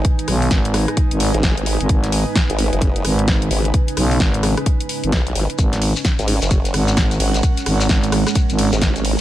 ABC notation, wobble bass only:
X:1
M:4/4
L:1/16
Q:"Swing 16ths" 1/4=130
K:G#m
V:1 name="Wobble bass" clef=bass
z8 z3 G,,,4 z | z4 z G,,,2 F,,,3 z4 G,,,2 | z12 B,,,2 G,,, z | z4 z G,,,2 F,,,3 z4 G,,,2 |
z8 z3 G,,,4 z |]